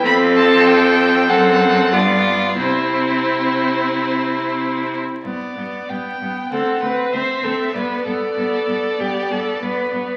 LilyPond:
<<
  \new Staff \with { instrumentName = "Violin" } { \time 4/4 \key c \major \tempo 4 = 95 b''8 a''8 g''4 fis''4 d''4 | c''2. r4 | \key g \major d''4 g''4 fis''4 e''4 | d''1 | }
  \new Staff \with { instrumentName = "Violin" } { \time 4/4 \key c \major a'2 a'4 f'4 | e'2.~ e'8 r8 | \key g \major r2 a'8 b'8 c''8 a'8 | b'8 a'4. g'8 a'8 b'4 | }
  \new Staff \with { instrumentName = "Viola" } { \time 4/4 \key c \major c'2 c'4 b4 | c'2.~ c'8 r8 | \key g \major b8 b8 b8 b8 c'8 c'8 c'8 c'8 | b8 b8 b8 b8 b8 b8 b8 b8 | }
  \new Staff \with { instrumentName = "Cello" } { \clef bass \time 4/4 \key c \major f,2 fis,4 g,4 | c2.~ c8 r8 | \key g \major g,8 g,8 g,8 g,8 d,8 d,8 d,8 d,8 | g,8 g,8 g,8 g,8 g,8 g,8 g,8 g,8 | }
>>